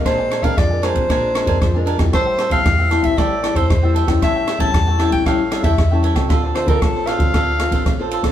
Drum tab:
RD |x-xxx-xxx-xxx-xx|x-xxx-xxx-xxx-xx|x-xxx-xxx-xxx-xx|x-xxx-xxx-xxx-xx|
SD |r-r-r-r-r-r-r--r|r-r-r-r-r-r-r--r|r-r-r-r-r-r-r--r|r-r-r-r-r-r-r--r|
BD |o--oo--oo--oo--o|o--oo--oo--oo--o|o--oo--oo--oo--o|o--oo--oo--oo--o|